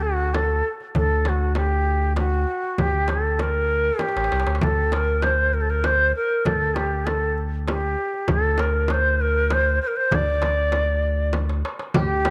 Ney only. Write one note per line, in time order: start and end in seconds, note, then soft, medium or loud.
0.02 0.36 F#4 medium
0.34 0.68 A4 medium
0.97 1.30 A4 medium
1.28 1.56 F#4 medium
1.57 2.13 G4 medium
2.19 2.81 F#4 medium
2.79 3.12 G4 medium
3.10 3.42 A4 medium
3.41 4.02 A#4 medium
4.00 4.61 G4 medium
4.62 4.95 A4 medium
4.93 5.24 A#4 medium
5.23 5.55 C5 medium
5.54 5.63 A#4 medium
5.61 5.72 A4 medium
5.70 5.87 A#4 medium
5.85 6.15 C5 medium
6.16 6.47 A#4 medium
6.46 6.76 A4 medium
6.74 7.07 G4 medium
7.05 7.36 A4 medium
7.68 8.33 G4 medium
8.31 8.62 A4 medium
8.60 8.93 A#4 medium
8.91 9.22 C5 medium
9.21 9.54 A#4 medium
9.53 9.82 C5 medium
9.82 9.89 C5 medium
9.87 9.98 A#4 medium
9.97 10.16 C5 medium
10.15 11.35 D5 medium
11.95 12.30 G4 medium